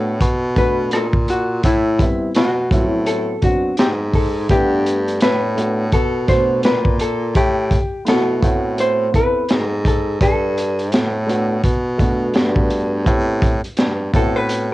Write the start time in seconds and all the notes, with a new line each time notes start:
Already playing: A2 A3 B3 D4 F#4 A4
0.21 B2, kick, closed hi-hat
0.55 A3 B3 D4 F#4 B4, kick, closed hi-hat
0.91 A#2 A4, cross-stick, closed hi-hat
1.13 kick
1.28 F#4, closed hi-hat
1.63 A2 E4, kick, closed hi-hat
1.98 G3 B3 C4 E4, kick, closed hi-hat
2.35 B2 F#4, snare, closed hi-hat
2.70 A2 F3 B3 C4 E4, kick, closed hi-hat
2.76 F#3
2.91 E4
3.06 A4, closed hi-hat
3.41 F#3 B3 C4 D4 F#4, kick, closed hi-hat
3.77 G#2 G4, snare, closed hi-hat
4.14 A4, kick, open hi-hat
4.48 G2 A3 B3 D4 E4 G4, kick, closed hi-hat
4.58 F#5
4.86 closed hi-hat
5.08 closed hi-hat
5.20 A2 B4, snare, closed hi-hat
5.55 A3 B3 D4 F#4, closed hi-hat
5.92 B2 A4, kick, closed hi-hat
6.27 B2 A3 D4 F#4 C5, kick, snare, closed hi-hat
6.63 A#2 B4, snare, closed hi-hat
6.85 kick
6.99 A4, closed hi-hat
7.35 A2 G4, kick, closed hi-hat
7.71 kick, closed hi-hat
8.05 B2 A3 B3 E4 F#4 A4, snare, closed hi-hat
8.41 A2 B3 C4 E4 F#4, kick, closed hi-hat
8.78 C5, closed hi-hat
9.12 B3 C4 E4 A4 B4, kick, closed hi-hat
9.49 G#2, snare, closed hi-hat
9.65 A4
9.85 A4, kick, closed hi-hat
10.21 G2 A4, kick, closed hi-hat
10.58 closed hi-hat
10.79 closed hi-hat
10.92 A2, snare, closed hi-hat
11.26 A3 B3 D4 F#4, closed hi-hat
11.63 B2, kick, closed hi-hat
11.98 A3 B3 D4 F#4, kick, closed hi-hat
12.33 G2 A3 B3 D4 F#4, snare, closed hi-hat
12.56 kick
12.70 closed hi-hat
13.05 A2 B3 C4 E4 G4, kick, closed hi-hat
13.42 kick, closed hi-hat
13.64 G2, closed hi-hat
13.77 G2, snare, closed hi-hat
14.13 A2 B3 C4 E4 F#4 A4, kick, closed hi-hat
14.36 B4
14.49 closed hi-hat